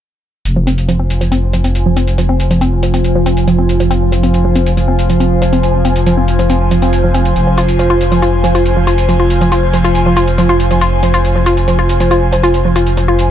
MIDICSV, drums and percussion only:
0, 0, Header, 1, 2, 480
1, 0, Start_track
1, 0, Key_signature, -4, "minor"
1, 0, Tempo, 431655
1, 506, Time_signature, 4, 2, 24, 8
1, 14798, End_track
2, 0, Start_track
2, 0, Title_t, "Drums"
2, 505, Note_on_c, 9, 42, 67
2, 616, Note_off_c, 9, 42, 0
2, 746, Note_on_c, 9, 42, 93
2, 857, Note_off_c, 9, 42, 0
2, 868, Note_on_c, 9, 42, 65
2, 979, Note_off_c, 9, 42, 0
2, 986, Note_on_c, 9, 42, 67
2, 1098, Note_off_c, 9, 42, 0
2, 1226, Note_on_c, 9, 42, 92
2, 1337, Note_off_c, 9, 42, 0
2, 1348, Note_on_c, 9, 42, 65
2, 1459, Note_off_c, 9, 42, 0
2, 1466, Note_on_c, 9, 42, 66
2, 1577, Note_off_c, 9, 42, 0
2, 1707, Note_on_c, 9, 42, 95
2, 1818, Note_off_c, 9, 42, 0
2, 1827, Note_on_c, 9, 42, 65
2, 1938, Note_off_c, 9, 42, 0
2, 1947, Note_on_c, 9, 42, 66
2, 2058, Note_off_c, 9, 42, 0
2, 2187, Note_on_c, 9, 42, 96
2, 2298, Note_off_c, 9, 42, 0
2, 2308, Note_on_c, 9, 42, 68
2, 2419, Note_off_c, 9, 42, 0
2, 2427, Note_on_c, 9, 42, 67
2, 2538, Note_off_c, 9, 42, 0
2, 2667, Note_on_c, 9, 42, 92
2, 2778, Note_off_c, 9, 42, 0
2, 2788, Note_on_c, 9, 42, 69
2, 2899, Note_off_c, 9, 42, 0
2, 2906, Note_on_c, 9, 42, 64
2, 3017, Note_off_c, 9, 42, 0
2, 3145, Note_on_c, 9, 42, 97
2, 3256, Note_off_c, 9, 42, 0
2, 3267, Note_on_c, 9, 42, 64
2, 3379, Note_off_c, 9, 42, 0
2, 3386, Note_on_c, 9, 42, 66
2, 3497, Note_off_c, 9, 42, 0
2, 3626, Note_on_c, 9, 42, 96
2, 3738, Note_off_c, 9, 42, 0
2, 3747, Note_on_c, 9, 42, 66
2, 3858, Note_off_c, 9, 42, 0
2, 3865, Note_on_c, 9, 42, 63
2, 3976, Note_off_c, 9, 42, 0
2, 4106, Note_on_c, 9, 42, 97
2, 4217, Note_off_c, 9, 42, 0
2, 4227, Note_on_c, 9, 42, 65
2, 4338, Note_off_c, 9, 42, 0
2, 4346, Note_on_c, 9, 42, 65
2, 4457, Note_off_c, 9, 42, 0
2, 4586, Note_on_c, 9, 42, 91
2, 4697, Note_off_c, 9, 42, 0
2, 4708, Note_on_c, 9, 42, 65
2, 4819, Note_off_c, 9, 42, 0
2, 4826, Note_on_c, 9, 42, 63
2, 4937, Note_off_c, 9, 42, 0
2, 5065, Note_on_c, 9, 42, 91
2, 5177, Note_off_c, 9, 42, 0
2, 5188, Note_on_c, 9, 42, 63
2, 5299, Note_off_c, 9, 42, 0
2, 5307, Note_on_c, 9, 42, 63
2, 5418, Note_off_c, 9, 42, 0
2, 5547, Note_on_c, 9, 42, 88
2, 5658, Note_off_c, 9, 42, 0
2, 5668, Note_on_c, 9, 42, 65
2, 5779, Note_off_c, 9, 42, 0
2, 5787, Note_on_c, 9, 42, 65
2, 5898, Note_off_c, 9, 42, 0
2, 6025, Note_on_c, 9, 42, 92
2, 6137, Note_off_c, 9, 42, 0
2, 6147, Note_on_c, 9, 42, 66
2, 6258, Note_off_c, 9, 42, 0
2, 6264, Note_on_c, 9, 42, 61
2, 6376, Note_off_c, 9, 42, 0
2, 6504, Note_on_c, 9, 42, 90
2, 6615, Note_off_c, 9, 42, 0
2, 6626, Note_on_c, 9, 42, 64
2, 6737, Note_off_c, 9, 42, 0
2, 6744, Note_on_c, 9, 42, 62
2, 6856, Note_off_c, 9, 42, 0
2, 6984, Note_on_c, 9, 42, 83
2, 7096, Note_off_c, 9, 42, 0
2, 7106, Note_on_c, 9, 42, 62
2, 7218, Note_off_c, 9, 42, 0
2, 7225, Note_on_c, 9, 42, 62
2, 7336, Note_off_c, 9, 42, 0
2, 7465, Note_on_c, 9, 42, 91
2, 7576, Note_off_c, 9, 42, 0
2, 7586, Note_on_c, 9, 42, 63
2, 7697, Note_off_c, 9, 42, 0
2, 7705, Note_on_c, 9, 42, 60
2, 7816, Note_off_c, 9, 42, 0
2, 7945, Note_on_c, 9, 42, 91
2, 8056, Note_off_c, 9, 42, 0
2, 8066, Note_on_c, 9, 42, 62
2, 8177, Note_off_c, 9, 42, 0
2, 8184, Note_on_c, 9, 42, 61
2, 8296, Note_off_c, 9, 42, 0
2, 8425, Note_on_c, 9, 42, 85
2, 8536, Note_off_c, 9, 42, 0
2, 8547, Note_on_c, 9, 42, 62
2, 8658, Note_off_c, 9, 42, 0
2, 8665, Note_on_c, 9, 42, 60
2, 8776, Note_off_c, 9, 42, 0
2, 8905, Note_on_c, 9, 42, 85
2, 9017, Note_off_c, 9, 42, 0
2, 9027, Note_on_c, 9, 42, 58
2, 9138, Note_off_c, 9, 42, 0
2, 9145, Note_on_c, 9, 42, 60
2, 9256, Note_off_c, 9, 42, 0
2, 9385, Note_on_c, 9, 42, 89
2, 9496, Note_off_c, 9, 42, 0
2, 9508, Note_on_c, 9, 42, 61
2, 9619, Note_off_c, 9, 42, 0
2, 9626, Note_on_c, 9, 42, 57
2, 9737, Note_off_c, 9, 42, 0
2, 9865, Note_on_c, 9, 42, 83
2, 9976, Note_off_c, 9, 42, 0
2, 9987, Note_on_c, 9, 42, 60
2, 10098, Note_off_c, 9, 42, 0
2, 10105, Note_on_c, 9, 42, 59
2, 10216, Note_off_c, 9, 42, 0
2, 10345, Note_on_c, 9, 42, 89
2, 10456, Note_off_c, 9, 42, 0
2, 10467, Note_on_c, 9, 42, 62
2, 10578, Note_off_c, 9, 42, 0
2, 10585, Note_on_c, 9, 42, 62
2, 10696, Note_off_c, 9, 42, 0
2, 10825, Note_on_c, 9, 42, 87
2, 10936, Note_off_c, 9, 42, 0
2, 10946, Note_on_c, 9, 42, 59
2, 11057, Note_off_c, 9, 42, 0
2, 11065, Note_on_c, 9, 42, 62
2, 11176, Note_off_c, 9, 42, 0
2, 11305, Note_on_c, 9, 42, 86
2, 11417, Note_off_c, 9, 42, 0
2, 11426, Note_on_c, 9, 42, 59
2, 11537, Note_off_c, 9, 42, 0
2, 11545, Note_on_c, 9, 42, 61
2, 11656, Note_off_c, 9, 42, 0
2, 11785, Note_on_c, 9, 42, 89
2, 11896, Note_off_c, 9, 42, 0
2, 11906, Note_on_c, 9, 42, 61
2, 12017, Note_off_c, 9, 42, 0
2, 12025, Note_on_c, 9, 42, 63
2, 12136, Note_off_c, 9, 42, 0
2, 12264, Note_on_c, 9, 42, 91
2, 12376, Note_off_c, 9, 42, 0
2, 12386, Note_on_c, 9, 42, 61
2, 12498, Note_off_c, 9, 42, 0
2, 12506, Note_on_c, 9, 42, 63
2, 12617, Note_off_c, 9, 42, 0
2, 12746, Note_on_c, 9, 42, 88
2, 12857, Note_off_c, 9, 42, 0
2, 12868, Note_on_c, 9, 42, 61
2, 12979, Note_off_c, 9, 42, 0
2, 12987, Note_on_c, 9, 42, 62
2, 13098, Note_off_c, 9, 42, 0
2, 13226, Note_on_c, 9, 42, 92
2, 13337, Note_off_c, 9, 42, 0
2, 13348, Note_on_c, 9, 42, 60
2, 13459, Note_off_c, 9, 42, 0
2, 13467, Note_on_c, 9, 42, 60
2, 13578, Note_off_c, 9, 42, 0
2, 13707, Note_on_c, 9, 42, 92
2, 13818, Note_off_c, 9, 42, 0
2, 13828, Note_on_c, 9, 42, 64
2, 13939, Note_off_c, 9, 42, 0
2, 13946, Note_on_c, 9, 42, 66
2, 14057, Note_off_c, 9, 42, 0
2, 14186, Note_on_c, 9, 42, 98
2, 14297, Note_off_c, 9, 42, 0
2, 14307, Note_on_c, 9, 42, 65
2, 14418, Note_off_c, 9, 42, 0
2, 14426, Note_on_c, 9, 42, 67
2, 14537, Note_off_c, 9, 42, 0
2, 14665, Note_on_c, 9, 42, 96
2, 14776, Note_off_c, 9, 42, 0
2, 14798, End_track
0, 0, End_of_file